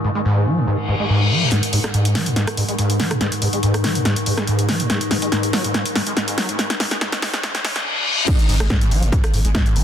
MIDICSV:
0, 0, Header, 1, 7, 480
1, 0, Start_track
1, 0, Tempo, 422535
1, 1726, Time_signature, 4, 2, 24, 8
1, 11176, End_track
2, 0, Start_track
2, 0, Title_t, "Synth drone"
2, 0, Program_c, 0, 95
2, 0, Note_on_c, 0, 44, 81
2, 0, Note_on_c, 0, 51, 80
2, 1711, Note_off_c, 0, 44, 0
2, 1711, Note_off_c, 0, 51, 0
2, 1725, Note_on_c, 0, 44, 81
2, 1725, Note_on_c, 0, 51, 81
2, 8925, Note_off_c, 0, 44, 0
2, 8925, Note_off_c, 0, 51, 0
2, 11176, End_track
3, 0, Start_track
3, 0, Title_t, "Acid bass"
3, 0, Program_c, 1, 38
3, 46, Note_on_c, 1, 44, 75
3, 116, Note_off_c, 1, 44, 0
3, 173, Note_on_c, 1, 56, 74
3, 235, Note_off_c, 1, 56, 0
3, 286, Note_on_c, 1, 44, 98
3, 526, Note_on_c, 1, 54, 100
3, 543, Note_off_c, 1, 44, 0
3, 652, Note_on_c, 1, 44, 76
3, 669, Note_off_c, 1, 54, 0
3, 746, Note_off_c, 1, 44, 0
3, 765, Note_on_c, 1, 44, 80
3, 870, Note_off_c, 1, 44, 0
3, 1004, Note_on_c, 1, 44, 78
3, 1075, Note_off_c, 1, 44, 0
3, 1132, Note_on_c, 1, 56, 75
3, 1194, Note_off_c, 1, 56, 0
3, 1244, Note_on_c, 1, 44, 99
3, 1484, Note_on_c, 1, 54, 93
3, 1501, Note_off_c, 1, 44, 0
3, 1613, Note_on_c, 1, 44, 77
3, 1630, Note_off_c, 1, 54, 0
3, 1706, Note_off_c, 1, 44, 0
3, 1724, Note_on_c, 1, 44, 81
3, 1830, Note_off_c, 1, 44, 0
3, 1964, Note_on_c, 1, 44, 75
3, 2035, Note_off_c, 1, 44, 0
3, 2093, Note_on_c, 1, 56, 73
3, 2155, Note_off_c, 1, 56, 0
3, 2203, Note_on_c, 1, 44, 97
3, 2444, Note_on_c, 1, 54, 104
3, 2461, Note_off_c, 1, 44, 0
3, 2570, Note_on_c, 1, 44, 77
3, 2587, Note_off_c, 1, 54, 0
3, 2665, Note_off_c, 1, 44, 0
3, 2683, Note_on_c, 1, 44, 80
3, 2789, Note_off_c, 1, 44, 0
3, 2924, Note_on_c, 1, 44, 75
3, 2995, Note_off_c, 1, 44, 0
3, 3051, Note_on_c, 1, 56, 77
3, 3114, Note_off_c, 1, 56, 0
3, 3164, Note_on_c, 1, 44, 94
3, 3403, Note_on_c, 1, 54, 101
3, 3420, Note_off_c, 1, 44, 0
3, 3530, Note_on_c, 1, 44, 73
3, 3547, Note_off_c, 1, 54, 0
3, 3624, Note_off_c, 1, 44, 0
3, 3643, Note_on_c, 1, 44, 81
3, 3749, Note_off_c, 1, 44, 0
3, 3883, Note_on_c, 1, 44, 77
3, 3954, Note_off_c, 1, 44, 0
3, 4012, Note_on_c, 1, 56, 75
3, 4074, Note_off_c, 1, 56, 0
3, 4124, Note_on_c, 1, 44, 93
3, 4364, Note_on_c, 1, 54, 105
3, 4381, Note_off_c, 1, 44, 0
3, 4492, Note_on_c, 1, 44, 76
3, 4509, Note_off_c, 1, 54, 0
3, 4585, Note_off_c, 1, 44, 0
3, 4605, Note_on_c, 1, 44, 86
3, 4710, Note_off_c, 1, 44, 0
3, 4845, Note_on_c, 1, 44, 81
3, 4915, Note_off_c, 1, 44, 0
3, 4974, Note_on_c, 1, 56, 74
3, 5035, Note_off_c, 1, 56, 0
3, 5087, Note_on_c, 1, 44, 94
3, 5325, Note_on_c, 1, 54, 99
3, 5342, Note_off_c, 1, 44, 0
3, 5454, Note_on_c, 1, 44, 76
3, 5471, Note_off_c, 1, 54, 0
3, 5546, Note_off_c, 1, 44, 0
3, 5567, Note_on_c, 1, 44, 77
3, 5671, Note_off_c, 1, 44, 0
3, 5805, Note_on_c, 1, 44, 67
3, 5875, Note_off_c, 1, 44, 0
3, 5933, Note_on_c, 1, 56, 69
3, 5995, Note_off_c, 1, 56, 0
3, 6046, Note_on_c, 1, 44, 92
3, 6279, Note_off_c, 1, 44, 0
3, 6286, Note_on_c, 1, 54, 98
3, 6406, Note_off_c, 1, 54, 0
3, 6413, Note_on_c, 1, 44, 71
3, 6506, Note_off_c, 1, 44, 0
3, 6525, Note_on_c, 1, 44, 78
3, 6630, Note_off_c, 1, 44, 0
3, 6766, Note_on_c, 1, 44, 76
3, 6836, Note_off_c, 1, 44, 0
3, 6893, Note_on_c, 1, 56, 73
3, 6955, Note_off_c, 1, 56, 0
3, 7007, Note_on_c, 1, 44, 92
3, 7239, Note_off_c, 1, 44, 0
3, 7246, Note_on_c, 1, 54, 94
3, 7367, Note_off_c, 1, 54, 0
3, 7374, Note_on_c, 1, 44, 74
3, 7466, Note_off_c, 1, 44, 0
3, 7487, Note_on_c, 1, 44, 84
3, 7591, Note_off_c, 1, 44, 0
3, 7725, Note_on_c, 1, 44, 78
3, 7795, Note_off_c, 1, 44, 0
3, 7853, Note_on_c, 1, 56, 72
3, 7915, Note_off_c, 1, 56, 0
3, 7966, Note_on_c, 1, 44, 82
3, 8070, Note_off_c, 1, 44, 0
3, 8205, Note_on_c, 1, 44, 76
3, 8275, Note_off_c, 1, 44, 0
3, 8332, Note_on_c, 1, 56, 80
3, 8394, Note_off_c, 1, 56, 0
3, 8444, Note_on_c, 1, 44, 86
3, 8550, Note_off_c, 1, 44, 0
3, 8686, Note_on_c, 1, 44, 84
3, 8790, Note_off_c, 1, 44, 0
3, 9405, Note_on_c, 1, 44, 82
3, 9510, Note_off_c, 1, 44, 0
3, 9644, Note_on_c, 1, 44, 74
3, 9715, Note_off_c, 1, 44, 0
3, 9772, Note_on_c, 1, 56, 75
3, 9834, Note_off_c, 1, 56, 0
3, 9885, Note_on_c, 1, 44, 101
3, 10125, Note_on_c, 1, 54, 105
3, 10142, Note_off_c, 1, 44, 0
3, 10252, Note_on_c, 1, 44, 77
3, 10269, Note_off_c, 1, 54, 0
3, 10346, Note_off_c, 1, 44, 0
3, 10365, Note_on_c, 1, 44, 79
3, 10470, Note_off_c, 1, 44, 0
3, 10606, Note_on_c, 1, 44, 83
3, 10676, Note_off_c, 1, 44, 0
3, 10733, Note_on_c, 1, 56, 77
3, 10795, Note_off_c, 1, 56, 0
3, 10847, Note_on_c, 1, 44, 92
3, 11086, Note_on_c, 1, 54, 100
3, 11103, Note_off_c, 1, 44, 0
3, 11176, Note_off_c, 1, 54, 0
3, 11176, End_track
4, 0, Start_track
4, 0, Title_t, "Sub bass"
4, 0, Program_c, 2, 38
4, 9644, Note_on_c, 2, 32, 106
4, 9764, Note_off_c, 2, 32, 0
4, 9771, Note_on_c, 2, 32, 84
4, 9883, Note_off_c, 2, 32, 0
4, 10123, Note_on_c, 2, 32, 95
4, 10244, Note_off_c, 2, 32, 0
4, 10251, Note_on_c, 2, 32, 83
4, 10362, Note_off_c, 2, 32, 0
4, 10604, Note_on_c, 2, 32, 100
4, 10724, Note_off_c, 2, 32, 0
4, 10730, Note_on_c, 2, 32, 84
4, 10842, Note_off_c, 2, 32, 0
4, 11083, Note_on_c, 2, 32, 104
4, 11176, Note_off_c, 2, 32, 0
4, 11176, End_track
5, 0, Start_track
5, 0, Title_t, "Reverse cymbal"
5, 0, Program_c, 3, 119
5, 765, Note_on_c, 3, 60, 79
5, 1725, Note_off_c, 3, 60, 0
5, 8444, Note_on_c, 3, 60, 81
5, 9405, Note_off_c, 3, 60, 0
5, 11176, End_track
6, 0, Start_track
6, 0, Title_t, "Riser"
6, 0, Program_c, 4, 103
6, 1724, Note_on_c, 4, 60, 79
6, 9405, Note_off_c, 4, 60, 0
6, 11176, End_track
7, 0, Start_track
7, 0, Title_t, "Drums"
7, 1723, Note_on_c, 9, 38, 46
7, 1723, Note_on_c, 9, 42, 66
7, 1837, Note_off_c, 9, 38, 0
7, 1837, Note_off_c, 9, 42, 0
7, 1851, Note_on_c, 9, 42, 67
7, 1964, Note_on_c, 9, 46, 100
7, 1965, Note_off_c, 9, 42, 0
7, 2077, Note_off_c, 9, 46, 0
7, 2091, Note_on_c, 9, 37, 89
7, 2091, Note_on_c, 9, 38, 41
7, 2091, Note_on_c, 9, 42, 65
7, 2204, Note_off_c, 9, 37, 0
7, 2204, Note_off_c, 9, 38, 0
7, 2204, Note_off_c, 9, 42, 0
7, 2204, Note_on_c, 9, 42, 66
7, 2317, Note_off_c, 9, 42, 0
7, 2331, Note_on_c, 9, 42, 70
7, 2444, Note_on_c, 9, 38, 51
7, 2444, Note_on_c, 9, 46, 110
7, 2445, Note_off_c, 9, 42, 0
7, 2558, Note_off_c, 9, 38, 0
7, 2558, Note_off_c, 9, 46, 0
7, 2571, Note_on_c, 9, 42, 65
7, 2684, Note_off_c, 9, 42, 0
7, 2684, Note_on_c, 9, 38, 53
7, 2684, Note_on_c, 9, 42, 74
7, 2797, Note_off_c, 9, 38, 0
7, 2797, Note_off_c, 9, 42, 0
7, 2811, Note_on_c, 9, 37, 93
7, 2811, Note_on_c, 9, 42, 71
7, 2924, Note_on_c, 9, 46, 109
7, 2925, Note_off_c, 9, 37, 0
7, 2925, Note_off_c, 9, 42, 0
7, 3038, Note_off_c, 9, 46, 0
7, 3051, Note_on_c, 9, 42, 63
7, 3164, Note_off_c, 9, 42, 0
7, 3164, Note_on_c, 9, 42, 70
7, 3278, Note_off_c, 9, 42, 0
7, 3291, Note_on_c, 9, 42, 71
7, 3404, Note_on_c, 9, 38, 61
7, 3404, Note_on_c, 9, 46, 108
7, 3405, Note_off_c, 9, 42, 0
7, 3518, Note_off_c, 9, 38, 0
7, 3518, Note_off_c, 9, 46, 0
7, 3532, Note_on_c, 9, 37, 88
7, 3532, Note_on_c, 9, 42, 66
7, 3644, Note_off_c, 9, 42, 0
7, 3644, Note_on_c, 9, 38, 56
7, 3644, Note_on_c, 9, 42, 65
7, 3645, Note_off_c, 9, 37, 0
7, 3758, Note_off_c, 9, 38, 0
7, 3758, Note_off_c, 9, 42, 0
7, 3771, Note_on_c, 9, 42, 71
7, 3883, Note_on_c, 9, 46, 116
7, 3885, Note_off_c, 9, 42, 0
7, 3997, Note_off_c, 9, 46, 0
7, 4010, Note_on_c, 9, 42, 68
7, 4123, Note_off_c, 9, 42, 0
7, 4123, Note_on_c, 9, 42, 67
7, 4237, Note_off_c, 9, 42, 0
7, 4251, Note_on_c, 9, 37, 86
7, 4251, Note_on_c, 9, 42, 69
7, 4362, Note_on_c, 9, 38, 64
7, 4362, Note_on_c, 9, 46, 110
7, 4364, Note_off_c, 9, 37, 0
7, 4364, Note_off_c, 9, 42, 0
7, 4476, Note_off_c, 9, 38, 0
7, 4476, Note_off_c, 9, 46, 0
7, 4491, Note_on_c, 9, 42, 70
7, 4603, Note_off_c, 9, 42, 0
7, 4603, Note_on_c, 9, 38, 67
7, 4603, Note_on_c, 9, 42, 74
7, 4717, Note_off_c, 9, 38, 0
7, 4717, Note_off_c, 9, 42, 0
7, 4730, Note_on_c, 9, 42, 69
7, 4843, Note_on_c, 9, 46, 109
7, 4844, Note_off_c, 9, 42, 0
7, 4956, Note_off_c, 9, 46, 0
7, 4970, Note_on_c, 9, 37, 87
7, 4970, Note_on_c, 9, 38, 62
7, 4970, Note_on_c, 9, 42, 66
7, 5083, Note_off_c, 9, 42, 0
7, 5083, Note_on_c, 9, 42, 66
7, 5084, Note_off_c, 9, 37, 0
7, 5084, Note_off_c, 9, 38, 0
7, 5197, Note_off_c, 9, 42, 0
7, 5210, Note_on_c, 9, 42, 70
7, 5324, Note_off_c, 9, 42, 0
7, 5324, Note_on_c, 9, 38, 72
7, 5324, Note_on_c, 9, 46, 108
7, 5437, Note_off_c, 9, 38, 0
7, 5437, Note_off_c, 9, 46, 0
7, 5451, Note_on_c, 9, 42, 68
7, 5564, Note_off_c, 9, 42, 0
7, 5564, Note_on_c, 9, 38, 68
7, 5564, Note_on_c, 9, 42, 67
7, 5677, Note_off_c, 9, 38, 0
7, 5677, Note_off_c, 9, 42, 0
7, 5691, Note_on_c, 9, 42, 66
7, 5803, Note_on_c, 9, 38, 78
7, 5803, Note_on_c, 9, 46, 110
7, 5805, Note_off_c, 9, 42, 0
7, 5917, Note_off_c, 9, 38, 0
7, 5917, Note_off_c, 9, 46, 0
7, 5932, Note_on_c, 9, 42, 67
7, 6044, Note_off_c, 9, 42, 0
7, 6044, Note_on_c, 9, 38, 76
7, 6044, Note_on_c, 9, 42, 69
7, 6157, Note_off_c, 9, 38, 0
7, 6157, Note_off_c, 9, 42, 0
7, 6172, Note_on_c, 9, 42, 67
7, 6285, Note_off_c, 9, 42, 0
7, 6285, Note_on_c, 9, 38, 83
7, 6285, Note_on_c, 9, 46, 114
7, 6399, Note_off_c, 9, 38, 0
7, 6399, Note_off_c, 9, 46, 0
7, 6412, Note_on_c, 9, 42, 64
7, 6525, Note_off_c, 9, 42, 0
7, 6525, Note_on_c, 9, 38, 88
7, 6525, Note_on_c, 9, 42, 70
7, 6638, Note_off_c, 9, 38, 0
7, 6638, Note_off_c, 9, 42, 0
7, 6652, Note_on_c, 9, 42, 67
7, 6765, Note_off_c, 9, 42, 0
7, 6765, Note_on_c, 9, 38, 83
7, 6765, Note_on_c, 9, 46, 112
7, 6879, Note_off_c, 9, 38, 0
7, 6879, Note_off_c, 9, 46, 0
7, 6891, Note_on_c, 9, 42, 66
7, 7005, Note_off_c, 9, 42, 0
7, 7005, Note_on_c, 9, 38, 88
7, 7005, Note_on_c, 9, 42, 72
7, 7119, Note_off_c, 9, 38, 0
7, 7119, Note_off_c, 9, 42, 0
7, 7132, Note_on_c, 9, 42, 67
7, 7245, Note_on_c, 9, 38, 94
7, 7245, Note_on_c, 9, 46, 118
7, 7246, Note_off_c, 9, 42, 0
7, 7359, Note_off_c, 9, 38, 0
7, 7359, Note_off_c, 9, 46, 0
7, 7372, Note_on_c, 9, 42, 69
7, 7485, Note_off_c, 9, 42, 0
7, 7485, Note_on_c, 9, 38, 87
7, 7485, Note_on_c, 9, 42, 64
7, 7599, Note_off_c, 9, 38, 0
7, 7599, Note_off_c, 9, 42, 0
7, 7612, Note_on_c, 9, 38, 83
7, 7612, Note_on_c, 9, 42, 67
7, 7726, Note_off_c, 9, 38, 0
7, 7726, Note_off_c, 9, 42, 0
7, 7726, Note_on_c, 9, 38, 100
7, 7726, Note_on_c, 9, 46, 115
7, 7839, Note_off_c, 9, 38, 0
7, 7839, Note_off_c, 9, 46, 0
7, 7853, Note_on_c, 9, 38, 85
7, 7853, Note_on_c, 9, 42, 63
7, 7966, Note_off_c, 9, 38, 0
7, 7966, Note_off_c, 9, 42, 0
7, 7966, Note_on_c, 9, 38, 100
7, 7966, Note_on_c, 9, 42, 67
7, 8080, Note_off_c, 9, 38, 0
7, 8080, Note_off_c, 9, 42, 0
7, 8093, Note_on_c, 9, 38, 86
7, 8093, Note_on_c, 9, 42, 66
7, 8207, Note_off_c, 9, 38, 0
7, 8207, Note_off_c, 9, 42, 0
7, 8207, Note_on_c, 9, 38, 103
7, 8207, Note_on_c, 9, 46, 110
7, 8320, Note_off_c, 9, 38, 0
7, 8320, Note_off_c, 9, 46, 0
7, 8333, Note_on_c, 9, 38, 86
7, 8333, Note_on_c, 9, 42, 65
7, 8446, Note_off_c, 9, 38, 0
7, 8446, Note_off_c, 9, 42, 0
7, 8446, Note_on_c, 9, 38, 112
7, 8446, Note_on_c, 9, 42, 68
7, 8559, Note_off_c, 9, 38, 0
7, 8559, Note_off_c, 9, 42, 0
7, 8573, Note_on_c, 9, 38, 92
7, 8573, Note_on_c, 9, 42, 67
7, 8686, Note_off_c, 9, 38, 0
7, 8686, Note_on_c, 9, 38, 109
7, 8686, Note_on_c, 9, 46, 113
7, 8687, Note_off_c, 9, 42, 0
7, 8799, Note_off_c, 9, 38, 0
7, 8799, Note_off_c, 9, 46, 0
7, 8813, Note_on_c, 9, 38, 93
7, 8813, Note_on_c, 9, 42, 62
7, 8927, Note_off_c, 9, 38, 0
7, 8927, Note_off_c, 9, 42, 0
7, 9404, Note_on_c, 9, 36, 127
7, 9405, Note_on_c, 9, 42, 66
7, 9405, Note_on_c, 9, 49, 104
7, 9518, Note_off_c, 9, 36, 0
7, 9519, Note_off_c, 9, 42, 0
7, 9519, Note_off_c, 9, 49, 0
7, 9533, Note_on_c, 9, 42, 68
7, 9646, Note_on_c, 9, 46, 107
7, 9647, Note_off_c, 9, 42, 0
7, 9759, Note_off_c, 9, 46, 0
7, 9772, Note_on_c, 9, 37, 93
7, 9772, Note_on_c, 9, 42, 64
7, 9884, Note_off_c, 9, 42, 0
7, 9884, Note_on_c, 9, 36, 114
7, 9884, Note_on_c, 9, 38, 127
7, 9884, Note_on_c, 9, 42, 69
7, 9886, Note_off_c, 9, 37, 0
7, 9998, Note_off_c, 9, 36, 0
7, 9998, Note_off_c, 9, 38, 0
7, 9998, Note_off_c, 9, 42, 0
7, 10013, Note_on_c, 9, 42, 72
7, 10126, Note_off_c, 9, 42, 0
7, 10126, Note_on_c, 9, 46, 104
7, 10240, Note_off_c, 9, 46, 0
7, 10253, Note_on_c, 9, 42, 68
7, 10364, Note_on_c, 9, 36, 123
7, 10367, Note_off_c, 9, 42, 0
7, 10367, Note_on_c, 9, 42, 75
7, 10478, Note_off_c, 9, 36, 0
7, 10480, Note_off_c, 9, 42, 0
7, 10494, Note_on_c, 9, 37, 100
7, 10494, Note_on_c, 9, 42, 74
7, 10606, Note_on_c, 9, 46, 106
7, 10608, Note_off_c, 9, 37, 0
7, 10608, Note_off_c, 9, 42, 0
7, 10720, Note_off_c, 9, 46, 0
7, 10733, Note_on_c, 9, 42, 67
7, 10844, Note_on_c, 9, 36, 123
7, 10845, Note_off_c, 9, 42, 0
7, 10845, Note_on_c, 9, 38, 126
7, 10845, Note_on_c, 9, 42, 69
7, 10958, Note_off_c, 9, 36, 0
7, 10959, Note_off_c, 9, 38, 0
7, 10959, Note_off_c, 9, 42, 0
7, 10973, Note_on_c, 9, 42, 70
7, 11086, Note_on_c, 9, 46, 110
7, 11087, Note_off_c, 9, 42, 0
7, 11176, Note_off_c, 9, 46, 0
7, 11176, End_track
0, 0, End_of_file